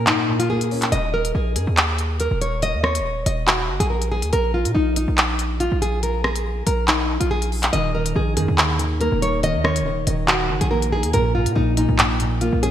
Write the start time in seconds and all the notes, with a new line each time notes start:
Already playing: A#2 A#3 C#4
0.07 A#2 D#4, clap, closed hi-hat
0.28 A#2
0.39 F4, closed hi-hat
0.50 A#3 G#4
0.61 closed hi-hat
0.71 C#4, open hi-hat
0.82 clap, closed hi-hat
0.92 D#1 D#5, closed hi-hat
1.14 A#4
1.25 closed hi-hat
1.35 A#1 G#4
1.56 F#2 G#4, closed hi-hat
1.67 D#2
1.77 clap, closed hi-hat
1.98 closed hi-hat
2.20 A#4, closed hi-hat
2.31 D#1
2.41 C#5, closed hi-hat
2.62 D#5, closed hi-hat
2.74 D#2
2.83 C#5, cross-stick
2.95 closed hi-hat
3.00 D#1
3.26 D#1 D#5, closed hi-hat
3.47 F#4, clap, closed hi-hat
3.69 F#1
3.80 A#1 G#4, closed hi-hat
3.90 A#4
4.02 closed hi-hat
4.12 G#4
4.22 D#2, closed hi-hat
4.33 A#1 A#4, closed hi-hat
4.54 F4
4.65 A#2, closed hi-hat
4.75 A#1 D#4
4.96 D#4, closed hi-hat
5.08 A#1
5.18 clap, closed hi-hat
5.39 closed hi-hat
5.60 F4, closed hi-hat
5.72 A#1
5.82 G#4, closed hi-hat
6.03 A#4, closed hi-hat
6.24 G#4, cross-stick
6.36 closed hi-hat
6.67 A#1 A#4, closed hi-hat
6.88 D#4, clap, closed hi-hat
7.20 A#1 F4, closed hi-hat
7.31 G#4
7.42 closed hi-hat
7.52 open hi-hat
7.63 clap, closed hi-hat
7.73 D#1 D#3 D#5, closed hi-hat
7.95 D#3 A#4
8.06 closed hi-hat
8.16 A#1 D#3 G#4
8.37 F#2 D#3 G#4, closed hi-hat
8.48 D#2
8.58 D#3, clap, closed hi-hat
8.79 D#3, closed hi-hat
9.00 A#3 A#4, closed hi-hat
9.12 D#1
9.21 D#4 C#5, closed hi-hat
9.43 D#3 D#5, closed hi-hat
9.55 D#2
9.64 D#3 C#5, cross-stick
9.76 closed hi-hat
9.81 D#1
9.85 D#3
10.07 D#1 D#3 D#5, closed hi-hat
10.28 D#3 F#4, clap, closed hi-hat
10.50 F#1 D#3
10.61 A#1 G#4, closed hi-hat
10.71 A#3 A#4
10.82 closed hi-hat
10.92 D#4 G#4
11.03 D#2, closed hi-hat
11.13 A#1 A#2 A#4, closed hi-hat
11.35 A#2 F4
11.46 A#2, closed hi-hat
11.55 A#1 A#2 D#4
11.77 A#2 D#4, closed hi-hat
11.89 A#1
11.98 A#2, clap, closed hi-hat
12.20 A#2, closed hi-hat
12.41 A#3 F4, closed hi-hat
12.53 A#1
12.63 C#4 G#4, closed hi-hat